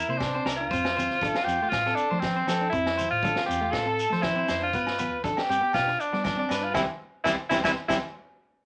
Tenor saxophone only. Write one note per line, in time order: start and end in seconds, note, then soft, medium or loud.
0.00 0.19 E4 loud
0.18 0.56 D4 medium
0.56 1.46 F4 loud
1.44 1.71 G4 loud
1.69 1.96 F4 loud
1.95 2.21 D4 loud
2.19 2.69 C4 loud
2.70 3.07 E4 loud
3.11 3.45 F4 loud
3.46 3.73 G4 loud
3.71 4.24 A4 loud
4.22 4.62 E4 loud
4.63 5.19 F4 medium
5.50 5.73 G4 loud
5.74 6.02 F4 loud
6.00 6.24 D4 loud
6.25 6.65 D4 medium
6.63 6.74 F4 medium
6.74 6.81 E4 loud
7.24 7.31 E4 loud
7.49 7.57 E4 loud
7.65 7.71 E4 loud
7.88 7.95 E4 loud